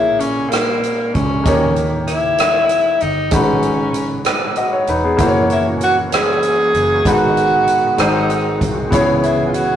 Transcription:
Already playing: A#1 A#2 A#3 E4 G#4 C#5
0.19 C#4, closed hi-hat
0.50 A#3, cross-stick, closed hi-hat
0.83 closed hi-hat
1.14 C#2 C#4, kick, closed hi-hat
1.44 D#2 D#3 A#3 G4 D#5, kick, closed hi-hat
1.48 C#5
1.76 closed hi-hat
2.08 E4, closed hi-hat
2.38 cross-stick, closed hi-hat
2.69 closed hi-hat
3.00 G1 D#4, closed hi-hat
3.31 G#1 G#2 G#3 C#4 D#4 F#4 B4, kick, closed hi-hat
3.62 closed hi-hat
3.94 closed hi-hat
4.25 cross-stick, closed hi-hat
4.56 F#4 D#5, closed hi-hat
4.73 C#5
4.87 E1 D#4 B4, closed hi-hat
5.04 B3 G#4
5.17 F#1 E3 A#3 C#4 E4 F#4, kick, closed hi-hat
5.21 C5
5.27 C#5
5.50 E4, closed hi-hat
5.81 F#4, closed hi-hat
6.12 G#4, cross-stick, closed hi-hat
6.43 closed hi-hat
6.74 F#1, closed hi-hat
7.05 G#1 G#2 D#3 G#3 B3 D#4 F#4 B4, kick, closed hi-hat
7.09 F#4
7.37 closed hi-hat
7.67 closed hi-hat
7.97 G#1 G#2 G#3 C4 D#4 F#4 C5, cross-stick, closed hi-hat
8.01 D#4
8.30 closed hi-hat
8.61 C2, kick, closed hi-hat
8.91 C#2 C#3 E3 B3 C#4 E4 G#4 C#5, kick, closed hi-hat
9.23 E4, closed hi-hat
9.48 F4
9.54 F#4, closed hi-hat

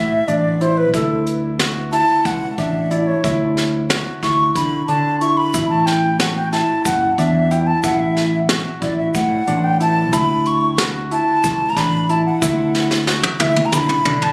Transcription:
Already playing: A2 E4 E5
0.28 A1 D4 D5, closed hi-hat
0.61 E4 C5, closed hi-hat
0.78 B4
0.94 D2 E4 A4, kick, closed hi-hat
1.26 closed hi-hat
1.59 F#4, snare, closed hi-hat
1.92 E4 A5, closed hi-hat
2.25 C#2 F#5, kick, closed hi-hat
2.58 A1 D4 E5, kick, closed hi-hat
2.91 E4 D5, closed hi-hat
3.07 C#5
3.24 D2 E4, kick, closed hi-hat
3.57 snare, closed hi-hat
3.90 F#4, snare, closed hi-hat
4.23 D2 E4 C#6, kick, snare, closed hi-hat
4.55 D3 B5, kick, closed hi-hat
4.87 D3 D4 A5, closed hi-hat
5.20 E4 C#6, closed hi-hat
5.37 B5
5.54 A1 E4, kick, closed hi-hat, shaker
5.70 A5
5.86 G5, snare, closed hi-hat
6.20 F#4 F#5, snare, closed hi-hat, shaker
6.36 G5
6.52 E4 A5, snare, closed hi-hat
6.85 F#1 F#5, kick, closed hi-hat, shaker
7.18 E2 D4 E5, kick, closed hi-hat, shaker
7.51 E4 G5, closed hi-hat
7.67 A5
7.83 A1 E4 F#5, kick, closed hi-hat, shaker
7.99 E5
8.17 snare, closed hi-hat
8.49 F#4, snare, closed hi-hat, shaker
8.81 A1 E4 D5, kick, closed hi-hat
8.98 E5
9.14 A2 F#5, kick, closed hi-hat, shaker
9.47 A1 D4, closed hi-hat, shaker
9.64 G5
9.80 E4 A5, closed hi-hat
10.13 D2 E4 B5, kick, closed hi-hat, shaker
10.45 C#6, closed hi-hat
10.78 F#4, snare, closed hi-hat, shaker
11.11 E4 A5, closed hi-hat
11.44 C#2, kick, closed hi-hat, shaker
11.70 A#5
11.77 A1 D4 B5, kick, snare, closed hi-hat, shaker
12.09 E4 A5, closed hi-hat
12.26 F#5
12.42 D2 E4, kick, closed hi-hat, shaker
12.75 snare
12.91 snare
13.07 F#4, snare, shaker
13.23 high tom
13.40 D2 E4 E5, high tom
13.56 mid tom
13.65 A#5
13.72 D3 B5, kick, mid tom, shaker
13.89 mid tom
14.05 D3 D4, mid tom, shaker
14.22 A5, floor tom

